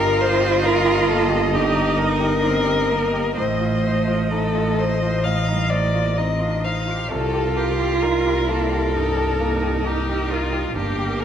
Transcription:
0.00 3.39 G1 medium
0.00 1.48 G2 medium
0.00 1.55 F4 loud
0.00 0.32 G4 medium
0.00 0.22 A#4 medium
0.00 3.33 D#5 medium
0.18 0.54 A#4 medium
0.18 0.67 C5 medium
0.40 0.76 G4 medium
0.62 0.98 D#4 medium
0.62 1.10 A#4 medium
0.85 1.21 G4 medium
1.08 1.44 A#3 medium
1.08 1.56 A4 medium
1.29 1.66 G4 medium
1.53 3.33 G2 medium
1.53 2.46 D#4 loud
1.53 2.01 G4 medium
1.75 2.12 D#4 medium
1.98 2.34 A#4 medium
1.98 3.36 A#4 medium
2.21 2.57 G4 medium
2.43 2.92 C4 medium
2.43 2.80 D#4 medium
2.66 3.04 G4 medium
2.89 3.39 A#3 medium
2.89 3.27 A#4 medium
3.13 3.37 G4 soft
3.36 7.12 A1 medium
3.36 5.20 A2 medium
3.36 5.48 A3 medium
3.36 4.19 C5 medium
3.36 6.87 D#5 medium
3.61 3.98 F4 soft
3.84 4.21 C5 soft
4.07 4.45 F4 soft
4.31 4.68 D#4 soft
4.31 4.80 A4 medium
4.55 4.92 F4 soft
4.78 5.25 C5 medium
4.78 5.15 C5 soft
5.02 5.39 F4 soft
5.24 7.07 A2 soft
5.24 5.71 F5 medium
5.48 5.74 G3 medium
5.48 5.85 D#4 soft
5.70 5.95 A3 medium
5.70 6.08 C5 soft
5.70 6.19 D5 medium
5.95 6.19 A#3 medium
5.95 6.31 F4 soft
6.18 6.45 C4 medium
6.18 6.55 D#4 soft
6.18 6.66 D#5 soft
6.41 6.68 D4 medium
6.41 6.78 F4 soft
6.64 6.92 D#4 medium
6.64 7.01 C5 soft
6.64 7.10 F5 soft
6.87 7.10 F4 soft
6.87 7.13 G4 medium
7.10 10.76 C2 medium
7.10 8.90 C2 medium
7.10 8.97 F4 loud
7.10 7.58 A4 medium
7.10 10.71 A#4 medium
7.33 7.70 G4 soft
7.56 8.04 G4 medium
7.56 7.93 A#4 soft
7.81 8.16 G4 soft
8.03 8.39 D#4 soft
8.03 8.50 A#4 medium
8.26 8.62 G4 soft
8.49 8.85 A#3 soft
8.49 9.86 A4 medium
8.72 9.07 G4 soft
8.95 9.30 G2 soft
8.95 10.77 D#4 medium
9.16 9.53 G4 soft
9.40 9.76 A#3 soft
9.63 9.98 G4 soft
9.84 10.21 D#4 soft
9.84 10.32 G4 medium
10.09 10.44 G4 soft
10.30 10.75 F4 medium
10.30 10.66 A#4 soft
10.53 10.75 G4 soft
10.75 11.25 G1 medium
10.75 11.25 G2 medium
10.75 11.25 A#3 medium
10.75 11.21 G4 medium
10.75 11.25 A#4 medium
10.99 11.25 G4 soft
11.20 11.25 A#4 soft
11.20 11.25 A#4 medium

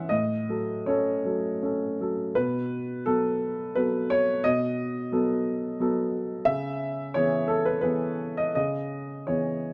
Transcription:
0.00 0.14 E3 soft
0.00 0.14 C#4 soft
0.00 0.14 B4 soft
0.00 0.14 E5 medium
0.00 0.14 F#5 medium
0.09 2.31 A2 medium
0.09 0.87 D#5 medium
0.49 0.84 F#3 soft
0.49 0.84 A4 soft
0.86 1.22 C#4 soft
0.86 1.22 A4 soft
0.86 1.61 C#5 medium
1.25 1.58 F#3 soft
1.25 1.59 A4 soft
1.63 1.95 C#4 soft
1.63 1.96 A4 soft
2.01 2.32 F#3 soft
2.01 2.33 A4 soft
2.35 3.05 B2 medium
2.35 3.06 B4 medium
3.06 3.73 F#3 soft
3.06 3.73 B3 soft
3.06 3.76 A4 medium
3.75 4.41 F#3 soft
3.75 4.41 B3 soft
3.75 4.41 A4 soft
3.75 4.10 B4 medium
4.10 4.44 C#5 medium
4.44 5.11 B2 medium
4.44 6.13 D#5 medium
5.12 5.75 F#3 soft
5.12 5.76 B3 soft
5.12 5.76 A4 medium
5.80 6.43 F#3 soft
5.80 6.44 B3 soft
5.80 6.44 A4 medium
6.45 7.13 C#3 medium
6.45 7.15 E5 medium
7.14 7.81 E3 soft
7.14 7.81 B3 soft
7.14 7.81 G#4 soft
7.14 7.49 C#5 medium
7.48 7.66 A4 medium
7.65 7.80 B4 medium
7.81 8.51 E3 soft
7.81 8.51 B3 soft
7.81 8.51 G#4 soft
7.81 8.36 B4 medium
8.37 8.54 D#5 medium
8.55 9.25 C#3 medium
8.55 9.27 D#5 medium
9.27 9.73 E3 soft
9.27 9.73 B3 soft
9.27 9.73 G#4 soft
9.27 9.73 C#5 medium

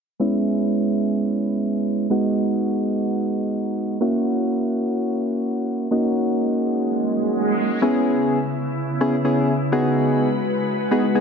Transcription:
0.19 2.06 G#3 medium
0.19 2.07 B3 medium
0.19 2.07 C#4 medium
0.19 2.07 E4 medium
2.10 3.97 G#3 medium
2.10 3.97 B3 medium
2.10 3.97 D#4 medium
2.10 3.97 F#4 medium
4.00 5.87 A#3 medium
4.00 5.88 C#4 medium
4.00 5.88 E4 medium
4.00 5.88 F#4 medium
5.91 7.78 A#3 medium
5.91 7.78 C#4 medium
5.91 7.78 D#4 medium
5.91 7.78 F#4 medium
5.91 swell medium
7.82 9.71 C#3 medium
7.82 8.38 B3 medium
7.82 9.71 B3 medium
7.82 8.38 C#4 medium
7.82 9.71 E4 medium
7.82 8.38 E4 medium
7.82 8.38 G#4 medium
9.01 9.15 B3 medium
9.01 9.15 C#4 medium
9.01 9.15 E4 medium
9.01 9.16 G#4 medium
9.24 9.53 B3 medium
9.24 9.53 C#4 medium
9.24 9.53 E4 medium
9.24 9.53 G#4 medium
9.72 11.20 G#3 medium
9.72 10.28 B3 medium
9.72 10.29 D#4 medium
9.72 11.20 F#4 medium
9.72 10.29 F#4 medium
9.72 10.29 G#4 medium
9.72 11.20 B4 medium
10.91 11.06 B3 medium
10.91 11.06 D#4 medium
10.91 11.06 F#4 medium
10.91 11.06 G#4 medium
11.15 11.20 B3 medium
11.15 11.20 D#4 medium
11.15 11.20 F#4 medium
11.15 11.20 G#4 medium

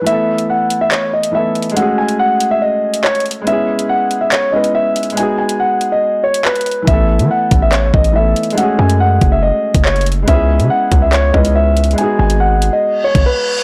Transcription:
0.01 1.29 E3 medium
0.01 1.30 A3 medium
0.06 1.32 B3 medium
0.06 1.33 E4 medium
0.06 0.46 E5 loud
0.06 closed hi-hat loud
0.12 1.34 A4 medium
0.38 closed hi-hat medium
0.50 0.79 F#5 medium
0.70 closed hi-hat medium
0.81 0.90 E5 medium
0.92 1.10 C#5 medium
0.92 clap loud
0.92 closed hi-hat medium
1.13 1.31 D#5 medium
1.23 closed hi-hat medium
1.31 1.75 E3 medium
1.31 1.73 A3 soft
1.31 1.77 B3 medium
1.31 1.75 E5 medium
1.35 1.77 E4 soft
1.35 1.78 A4 medium
1.55 closed hi-hat medium
1.62 closed hi-hat medium
1.70 3.40 G#3 medium
1.70 closed hi-hat soft
1.74 3.42 A3 medium
1.74 3.43 C#4 medium
1.74 1.94 F#5 medium
1.74 closed hi-hat loud
1.79 3.45 F#4 medium
1.79 3.46 G#4 medium
1.98 2.16 G#5 medium
2.09 closed hi-hat medium
2.19 2.49 F#5 medium
2.40 closed hi-hat medium
2.51 2.60 E5 medium
2.62 3.02 D#5 medium
2.94 closed hi-hat medium
3.04 3.22 C#5 medium
3.04 clap loud
3.15 closed hi-hat soft
3.20 closed hi-hat medium
3.26 closed hi-hat medium
3.31 closed hi-hat medium
3.42 4.48 G#3 medium
3.42 4.50 B3 medium
3.47 4.51 C#4 medium
3.47 4.52 E4 medium
3.47 3.87 E5 loud
3.47 closed hi-hat medium
3.52 4.54 G#4 medium
3.79 closed hi-hat medium
3.89 4.19 F#5 medium
4.11 closed hi-hat medium
4.21 4.30 E5 medium
4.32 4.50 C#5 medium
4.32 clap loud
4.32 closed hi-hat medium
4.51 5.11 G#3 medium
4.51 5.13 B3 soft
4.51 5.17 C#4 soft
4.51 5.18 E4 soft
4.51 4.71 D#5 medium
4.56 5.18 B4 medium
4.64 closed hi-hat medium
4.75 5.15 E5 medium
4.96 closed hi-hat medium
5.03 closed hi-hat medium
5.10 6.81 G#3 medium
5.10 closed hi-hat soft
5.15 6.83 B3 medium
5.15 6.84 D#4 medium
5.15 5.35 G#5 medium
5.15 closed hi-hat loud
5.20 6.85 F#4 medium
5.20 6.87 G#4 medium
5.38 5.56 G#5 medium
5.49 closed hi-hat medium
5.60 5.90 F#5 medium
5.81 closed hi-hat medium
5.92 6.22 D#5 medium
6.24 6.41 C#5 medium
6.34 closed hi-hat medium
6.45 6.85 B4 medium
6.45 clap loud
6.56 closed hi-hat medium
6.61 closed hi-hat medium
6.66 closed hi-hat medium
6.71 closed hi-hat soft
6.82 8.10 E3 medium
6.82 8.11 A3 medium
6.87 7.21 A1 loud
6.87 8.13 B3 medium
6.87 8.14 E4 medium
6.87 7.27 E5 loud
6.87 kick loud
6.87 closed hi-hat loud
6.93 8.15 A4 medium
7.19 7.29 E3 loud
7.19 closed hi-hat medium
7.31 7.60 F#5 medium
7.51 7.92 A1 loud
7.51 kick loud
7.51 closed hi-hat medium
7.62 7.71 E5 medium
7.72 7.90 C#5 medium
7.72 clap loud
7.72 closed hi-hat medium
7.94 8.35 A1 loud
7.94 8.12 D#5 medium
7.94 kick medium
8.04 closed hi-hat medium
8.12 8.56 E3 medium
8.12 8.53 A3 soft
8.12 8.57 B3 soft
8.12 8.58 E4 soft
8.12 8.55 E5 medium
8.17 8.59 A4 medium
8.36 closed hi-hat medium
8.43 closed hi-hat soft
8.50 10.21 G#3 medium
8.50 closed hi-hat soft
8.55 10.23 A3 medium
8.55 10.24 C#4 medium
8.55 8.75 F#5 medium
8.55 closed hi-hat loud
8.60 10.26 F#4 medium
8.60 10.27 G#4 medium
8.79 9.20 F#2 loud
8.79 8.97 G#5 medium
8.90 closed hi-hat medium
9.00 9.30 F#5 medium
9.21 9.52 F#1 loud
9.21 kick loud
9.21 closed hi-hat medium
9.32 9.41 E5 medium
9.43 9.83 D#5 medium
9.75 10.26 F#1 loud
9.75 kick loud
9.75 closed hi-hat medium
9.85 10.03 C#5 medium
9.85 clap loud
9.96 closed hi-hat soft
10.01 closed hi-hat medium
10.06 closed hi-hat medium
10.12 closed hi-hat medium
10.23 11.29 G#3 medium
10.23 11.31 B3 medium
10.28 10.61 C#2 loud
10.28 11.32 C#4 medium
10.28 11.33 E4 medium
10.28 10.68 E5 loud
10.28 kick loud
10.28 closed hi-hat loud
10.33 11.35 G#4 medium
10.60 10.70 C#3 loud
10.60 closed hi-hat medium
10.70 11.00 F#5 medium
10.92 11.32 C#2 loud
10.92 kick loud
10.92 closed hi-hat medium
11.02 11.11 E5 medium
11.13 11.31 C#5 medium
11.13 clap loud
11.13 closed hi-hat medium
11.32 11.95 C#2 loud
11.32 11.91 G#3 medium
11.32 11.94 B3 soft
11.32 11.98 C#4 medium
11.32 11.99 E4 soft
11.32 11.52 D#5 medium
11.32 kick medium
11.37 11.99 B4 medium
11.45 closed hi-hat medium
11.56 11.95 E5 medium
11.77 closed hi-hat medium
11.84 closed hi-hat medium
11.91 13.62 G#3 medium
11.91 closed hi-hat soft
11.96 13.63 B3 medium
11.96 13.63 D#4 medium
11.96 12.16 G#5 medium
11.96 closed hi-hat medium
12.01 13.63 F#4 medium
12.01 13.63 G#4 medium
12.19 12.70 G#1 loud
12.19 12.37 G#5 medium
12.30 closed hi-hat medium
12.40 12.70 F#5 medium
12.62 closed hi-hat medium
12.73 13.03 D#5 medium
12.83 reverse cymbal medium
13.04 13.22 C#5 medium
13.15 13.25 G#1 loud
13.15 kick loud
13.15 closed hi-hat medium
13.26 13.63 B4 medium

